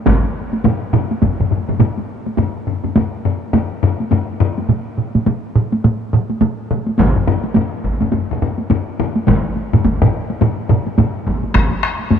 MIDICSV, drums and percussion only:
0, 0, Header, 1, 2, 480
1, 0, Start_track
1, 0, Tempo, 576923
1, 55, Time_signature, 4, 2, 24, 8
1, 5815, Tempo, 569801
1, 10200, End_track
2, 0, Start_track
2, 0, Title_t, "Taiko and cinematic ensemble drums"
2, 54, Note_on_c, 9, 45, 107
2, 54, Note_on_c, 9, 47, 85
2, 54, Note_on_c, 9, 48, 77
2, 56, Note_on_c, 9, 41, 105
2, 137, Note_off_c, 9, 45, 0
2, 137, Note_off_c, 9, 47, 0
2, 138, Note_off_c, 9, 48, 0
2, 139, Note_off_c, 9, 41, 0
2, 440, Note_on_c, 9, 48, 59
2, 523, Note_off_c, 9, 48, 0
2, 534, Note_on_c, 9, 48, 74
2, 537, Note_on_c, 9, 45, 103
2, 539, Note_on_c, 9, 47, 88
2, 617, Note_off_c, 9, 48, 0
2, 620, Note_off_c, 9, 45, 0
2, 622, Note_off_c, 9, 47, 0
2, 775, Note_on_c, 9, 47, 92
2, 778, Note_on_c, 9, 45, 102
2, 858, Note_off_c, 9, 47, 0
2, 861, Note_off_c, 9, 45, 0
2, 923, Note_on_c, 9, 48, 58
2, 1007, Note_off_c, 9, 48, 0
2, 1016, Note_on_c, 9, 48, 66
2, 1018, Note_on_c, 9, 45, 72
2, 1019, Note_on_c, 9, 47, 79
2, 1020, Note_on_c, 9, 41, 66
2, 1099, Note_off_c, 9, 48, 0
2, 1102, Note_off_c, 9, 45, 0
2, 1102, Note_off_c, 9, 47, 0
2, 1103, Note_off_c, 9, 41, 0
2, 1164, Note_on_c, 9, 47, 67
2, 1168, Note_on_c, 9, 45, 73
2, 1247, Note_off_c, 9, 47, 0
2, 1251, Note_off_c, 9, 45, 0
2, 1257, Note_on_c, 9, 47, 75
2, 1265, Note_on_c, 9, 45, 69
2, 1341, Note_off_c, 9, 47, 0
2, 1348, Note_off_c, 9, 45, 0
2, 1403, Note_on_c, 9, 47, 73
2, 1403, Note_on_c, 9, 48, 50
2, 1407, Note_on_c, 9, 45, 66
2, 1486, Note_off_c, 9, 48, 0
2, 1487, Note_off_c, 9, 47, 0
2, 1490, Note_off_c, 9, 45, 0
2, 1494, Note_on_c, 9, 47, 90
2, 1498, Note_on_c, 9, 45, 96
2, 1498, Note_on_c, 9, 48, 67
2, 1577, Note_off_c, 9, 47, 0
2, 1581, Note_off_c, 9, 45, 0
2, 1582, Note_off_c, 9, 48, 0
2, 1644, Note_on_c, 9, 48, 48
2, 1727, Note_off_c, 9, 48, 0
2, 1884, Note_on_c, 9, 48, 49
2, 1968, Note_off_c, 9, 48, 0
2, 1976, Note_on_c, 9, 48, 65
2, 1981, Note_on_c, 9, 45, 96
2, 2060, Note_off_c, 9, 48, 0
2, 2065, Note_off_c, 9, 45, 0
2, 2227, Note_on_c, 9, 45, 67
2, 2310, Note_off_c, 9, 45, 0
2, 2362, Note_on_c, 9, 48, 51
2, 2365, Note_on_c, 9, 45, 62
2, 2445, Note_off_c, 9, 48, 0
2, 2448, Note_off_c, 9, 45, 0
2, 2460, Note_on_c, 9, 48, 74
2, 2462, Note_on_c, 9, 45, 102
2, 2543, Note_off_c, 9, 48, 0
2, 2545, Note_off_c, 9, 45, 0
2, 2705, Note_on_c, 9, 45, 87
2, 2789, Note_off_c, 9, 45, 0
2, 2942, Note_on_c, 9, 45, 103
2, 2942, Note_on_c, 9, 48, 67
2, 3025, Note_off_c, 9, 45, 0
2, 3025, Note_off_c, 9, 48, 0
2, 3186, Note_on_c, 9, 45, 102
2, 3269, Note_off_c, 9, 45, 0
2, 3329, Note_on_c, 9, 48, 48
2, 3412, Note_off_c, 9, 48, 0
2, 3419, Note_on_c, 9, 48, 65
2, 3425, Note_on_c, 9, 45, 95
2, 3502, Note_off_c, 9, 48, 0
2, 3508, Note_off_c, 9, 45, 0
2, 3663, Note_on_c, 9, 45, 108
2, 3746, Note_off_c, 9, 45, 0
2, 3809, Note_on_c, 9, 48, 58
2, 3892, Note_off_c, 9, 48, 0
2, 3900, Note_on_c, 9, 47, 86
2, 3905, Note_on_c, 9, 48, 61
2, 3984, Note_off_c, 9, 47, 0
2, 3988, Note_off_c, 9, 48, 0
2, 4141, Note_on_c, 9, 47, 69
2, 4224, Note_off_c, 9, 47, 0
2, 4284, Note_on_c, 9, 48, 56
2, 4286, Note_on_c, 9, 47, 68
2, 4368, Note_off_c, 9, 48, 0
2, 4369, Note_off_c, 9, 47, 0
2, 4379, Note_on_c, 9, 48, 73
2, 4383, Note_on_c, 9, 47, 92
2, 4462, Note_off_c, 9, 48, 0
2, 4466, Note_off_c, 9, 47, 0
2, 4622, Note_on_c, 9, 47, 98
2, 4705, Note_off_c, 9, 47, 0
2, 4762, Note_on_c, 9, 48, 59
2, 4845, Note_off_c, 9, 48, 0
2, 4861, Note_on_c, 9, 48, 65
2, 4862, Note_on_c, 9, 47, 105
2, 4944, Note_off_c, 9, 48, 0
2, 4945, Note_off_c, 9, 47, 0
2, 5101, Note_on_c, 9, 47, 101
2, 5184, Note_off_c, 9, 47, 0
2, 5238, Note_on_c, 9, 48, 54
2, 5321, Note_off_c, 9, 48, 0
2, 5333, Note_on_c, 9, 48, 75
2, 5341, Note_on_c, 9, 47, 103
2, 5416, Note_off_c, 9, 48, 0
2, 5424, Note_off_c, 9, 47, 0
2, 5580, Note_on_c, 9, 47, 108
2, 5664, Note_off_c, 9, 47, 0
2, 5712, Note_on_c, 9, 48, 52
2, 5796, Note_off_c, 9, 48, 0
2, 5806, Note_on_c, 9, 48, 67
2, 5814, Note_on_c, 9, 45, 72
2, 5818, Note_on_c, 9, 41, 103
2, 5890, Note_off_c, 9, 48, 0
2, 5898, Note_off_c, 9, 45, 0
2, 5902, Note_off_c, 9, 41, 0
2, 5961, Note_on_c, 9, 45, 66
2, 6045, Note_off_c, 9, 45, 0
2, 6058, Note_on_c, 9, 45, 105
2, 6142, Note_off_c, 9, 45, 0
2, 6192, Note_on_c, 9, 48, 61
2, 6276, Note_off_c, 9, 48, 0
2, 6286, Note_on_c, 9, 48, 74
2, 6298, Note_on_c, 9, 45, 100
2, 6370, Note_off_c, 9, 48, 0
2, 6382, Note_off_c, 9, 45, 0
2, 6537, Note_on_c, 9, 41, 74
2, 6621, Note_off_c, 9, 41, 0
2, 6672, Note_on_c, 9, 48, 61
2, 6684, Note_on_c, 9, 45, 71
2, 6756, Note_off_c, 9, 48, 0
2, 6768, Note_off_c, 9, 45, 0
2, 6768, Note_on_c, 9, 48, 71
2, 6778, Note_on_c, 9, 45, 73
2, 6852, Note_off_c, 9, 48, 0
2, 6862, Note_off_c, 9, 45, 0
2, 6930, Note_on_c, 9, 45, 73
2, 7014, Note_off_c, 9, 45, 0
2, 7024, Note_on_c, 9, 45, 85
2, 7108, Note_off_c, 9, 45, 0
2, 7154, Note_on_c, 9, 48, 51
2, 7238, Note_off_c, 9, 48, 0
2, 7255, Note_on_c, 9, 48, 74
2, 7262, Note_on_c, 9, 45, 99
2, 7339, Note_off_c, 9, 48, 0
2, 7346, Note_off_c, 9, 45, 0
2, 7505, Note_on_c, 9, 45, 102
2, 7590, Note_off_c, 9, 45, 0
2, 7644, Note_on_c, 9, 48, 58
2, 7728, Note_off_c, 9, 48, 0
2, 7736, Note_on_c, 9, 48, 68
2, 7744, Note_on_c, 9, 45, 91
2, 7746, Note_on_c, 9, 47, 84
2, 7747, Note_on_c, 9, 41, 106
2, 7820, Note_off_c, 9, 48, 0
2, 7828, Note_off_c, 9, 45, 0
2, 7830, Note_off_c, 9, 47, 0
2, 7831, Note_off_c, 9, 41, 0
2, 7979, Note_on_c, 9, 48, 52
2, 8063, Note_off_c, 9, 48, 0
2, 8127, Note_on_c, 9, 45, 95
2, 8128, Note_on_c, 9, 48, 54
2, 8129, Note_on_c, 9, 47, 90
2, 8211, Note_off_c, 9, 45, 0
2, 8212, Note_off_c, 9, 48, 0
2, 8213, Note_off_c, 9, 47, 0
2, 8221, Note_on_c, 9, 48, 72
2, 8225, Note_on_c, 9, 41, 78
2, 8305, Note_off_c, 9, 48, 0
2, 8309, Note_off_c, 9, 41, 0
2, 8367, Note_on_c, 9, 45, 106
2, 8370, Note_on_c, 9, 47, 93
2, 8451, Note_off_c, 9, 45, 0
2, 8455, Note_off_c, 9, 47, 0
2, 8604, Note_on_c, 9, 48, 59
2, 8688, Note_off_c, 9, 48, 0
2, 8697, Note_on_c, 9, 48, 70
2, 8703, Note_on_c, 9, 45, 95
2, 8703, Note_on_c, 9, 47, 104
2, 8781, Note_off_c, 9, 48, 0
2, 8787, Note_off_c, 9, 45, 0
2, 8787, Note_off_c, 9, 47, 0
2, 8935, Note_on_c, 9, 45, 90
2, 8940, Note_on_c, 9, 47, 99
2, 9019, Note_off_c, 9, 45, 0
2, 9024, Note_off_c, 9, 47, 0
2, 9081, Note_on_c, 9, 48, 54
2, 9165, Note_off_c, 9, 48, 0
2, 9175, Note_on_c, 9, 48, 70
2, 9179, Note_on_c, 9, 45, 95
2, 9182, Note_on_c, 9, 47, 90
2, 9259, Note_off_c, 9, 48, 0
2, 9264, Note_off_c, 9, 45, 0
2, 9266, Note_off_c, 9, 47, 0
2, 9418, Note_on_c, 9, 41, 77
2, 9503, Note_off_c, 9, 41, 0
2, 9558, Note_on_c, 9, 48, 49
2, 9642, Note_off_c, 9, 48, 0
2, 9651, Note_on_c, 9, 37, 67
2, 9651, Note_on_c, 9, 48, 65
2, 9658, Note_on_c, 9, 41, 101
2, 9735, Note_off_c, 9, 48, 0
2, 9736, Note_off_c, 9, 37, 0
2, 9742, Note_off_c, 9, 41, 0
2, 9794, Note_on_c, 9, 48, 51
2, 9878, Note_off_c, 9, 48, 0
2, 9894, Note_on_c, 9, 37, 70
2, 9978, Note_off_c, 9, 37, 0
2, 10030, Note_on_c, 9, 48, 20
2, 10115, Note_off_c, 9, 48, 0
2, 10125, Note_on_c, 9, 48, 74
2, 10129, Note_on_c, 9, 45, 88
2, 10200, Note_off_c, 9, 45, 0
2, 10200, Note_off_c, 9, 48, 0
2, 10200, End_track
0, 0, End_of_file